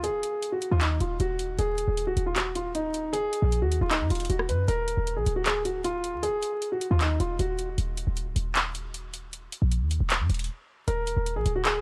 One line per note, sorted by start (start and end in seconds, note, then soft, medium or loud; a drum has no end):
0.00 0.10 D#2 loud
0.00 0.49 G#4 medium
0.00 closed hi-hat medium
0.09 0.22 D1 loud
0.23 closed hi-hat medium
0.42 closed hi-hat medium
0.52 0.67 F#4 medium
0.62 closed hi-hat medium
0.71 0.99 D#2 loud
0.71 0.79 F4 medium
0.81 0.96 D#4 medium
0.81 clap loud
0.81 closed hi-hat medium
1.00 1.19 D#1 loud
1.00 1.15 F4 medium
1.00 closed hi-hat medium
1.20 1.57 D#1 loud
1.20 1.57 F#4 medium
1.20 closed hi-hat medium
1.39 closed hi-hat medium
1.59 1.86 D#1 loud
1.59 2.04 G#4 loud
1.59 closed hi-hat medium
1.78 closed hi-hat medium
1.88 2.08 D#1 loud
1.97 closed hi-hat medium
2.07 2.16 D1 loud
2.07 2.22 F#4 medium
2.17 3.29 D#1 loud
2.17 closed hi-hat medium
2.26 2.34 F4 medium
2.36 2.51 F#4 medium
2.36 clap loud
2.36 closed hi-hat medium
2.55 2.70 F4 medium
2.55 closed hi-hat medium
2.75 3.11 D#4 medium
2.75 closed hi-hat medium
2.94 closed hi-hat medium
3.13 3.59 G#4 loud
3.13 closed hi-hat medium
3.33 closed hi-hat medium
3.42 3.63 A#1 loud
3.52 closed hi-hat medium
3.62 3.80 D#2 loud
3.62 3.77 F#4 medium
3.72 closed hi-hat medium
3.81 4.02 D#1 loud
3.81 3.89 F4 medium
3.91 4.05 D#4 medium
3.91 clap loud
3.91 closed hi-hat medium
4.00 4.10 F#2 loud
4.10 4.29 D#1 loud
4.10 4.25 F4 medium
4.10 closed hi-hat medium
4.15 closed hi-hat medium
4.20 closed hi-hat medium
4.25 closed hi-hat medium
4.29 4.50 D#1 loud
4.29 4.44 F#4 medium
4.29 closed hi-hat medium
4.39 cross-stick medium
4.49 4.67 F#2 loud
4.49 4.64 B4 medium
4.49 closed hi-hat medium
4.68 4.96 D#1 loud
4.68 5.14 A#4 medium
4.68 closed hi-hat medium
4.88 closed hi-hat medium
4.97 5.18 D#1 loud
5.07 closed hi-hat medium
5.17 5.26 A#1 loud
5.17 5.31 G#4 medium
5.26 6.15 D1 loud
5.26 closed hi-hat medium
5.36 5.43 F#4 medium
5.46 5.60 G#4 medium
5.46 clap loud
5.46 closed hi-hat medium
5.65 5.80 F#4 medium
5.65 closed hi-hat medium
5.84 6.21 F4 medium
5.84 closed hi-hat medium
6.04 closed hi-hat medium
6.13 6.29 D#2 medium
6.23 6.68 G#4 loud
6.23 closed hi-hat medium
6.28 6.42 D1 loud
6.43 closed hi-hat medium
6.62 closed hi-hat medium
6.72 6.87 F#4 medium
6.81 closed hi-hat medium
6.91 7.19 D#2 loud
6.91 6.98 F4 medium
7.01 7.16 D#4 medium
7.01 clap loud
7.01 closed hi-hat medium
7.20 7.38 D#1 loud
7.20 7.35 F4 medium
7.20 closed hi-hat medium
7.39 7.76 D#1 loud
7.39 7.76 F#4 medium
7.39 closed hi-hat medium
7.59 closed hi-hat medium
7.78 8.06 D#1 loud
7.78 closed hi-hat medium
7.97 closed hi-hat medium
8.07 8.28 D#1 loud
8.17 closed hi-hat medium
8.26 8.35 D1 loud
8.36 9.48 D#1 loud
8.36 closed hi-hat medium
8.55 clap loud
8.55 closed hi-hat medium
8.75 closed hi-hat medium
8.94 closed hi-hat medium
9.14 closed hi-hat medium
9.33 closed hi-hat medium
9.52 closed hi-hat medium
9.62 9.83 A#1 loud
9.72 closed hi-hat medium
9.81 10.00 D#2 loud
9.91 closed hi-hat medium
10.00 10.21 D#1 loud
10.10 clap loud
10.10 closed hi-hat medium
10.20 10.29 F#2 medium
10.30 10.49 D#1 loud
10.30 closed hi-hat medium
10.34 closed hi-hat medium
10.39 closed hi-hat medium
10.44 closed hi-hat medium
10.88 11.16 D#1 loud
10.88 11.33 A#4 medium
10.88 closed hi-hat medium
11.07 closed hi-hat medium
11.17 11.37 D#1 loud
11.26 closed hi-hat medium
11.36 11.45 A#1 loud
11.36 11.51 G#4 medium
11.46 11.81 D1 loud
11.46 closed hi-hat medium
11.56 11.63 F#4 medium
11.65 11.80 G#4 medium
11.65 clap loud
11.65 closed hi-hat medium